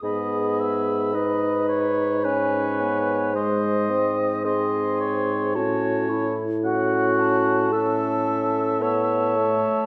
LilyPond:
<<
  \new Staff \with { instrumentName = "Flute" } { \time 3/4 \key gis \phrygian \tempo 4 = 55 b''2 gis''4 | bis''4 bis''4 a''8. r16 | fis''8 a''4. a''4 | }
  \new Staff \with { instrumentName = "Oboe" } { \time 3/4 \key gis \phrygian dis''8 e''8 dis''8 cis''8 b'4 | dis''4 dis''8 cis''8 cis''8. r16 | fis''4 e''2 | }
  \new Staff \with { instrumentName = "Clarinet" } { \time 3/4 \key gis \phrygian gis'4 b'4 cis''4 | bis'4 gis'4 fis'8 e'8 | fis'4 a'4 cis''4 | }
  \new Staff \with { instrumentName = "French horn" } { \time 3/4 \key gis \phrygian b4 dis'4 cis'8 b8 | gis8 bis8 bis4 cis'8. r16 | cis'4 cis'4 b8 a8 | }
  \new Staff \with { instrumentName = "Bassoon" } { \clef bass \time 3/4 \key gis \phrygian gis,2.~ | gis,2 a,4~ | a,2~ a,8. r16 | }
>>